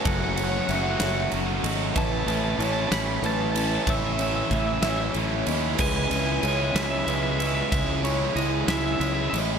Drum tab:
CC |------|------|------|x-----|
RD |xxxxxx|xxxxxx|xxxxxx|-xxxxx|
SD |---o--|---o--|---o--|---o--|
BD |o-----|o-----|o-o---|o-----|

CC |------|
RD |xxxxxx|
SD |---o--|
BD |o-----|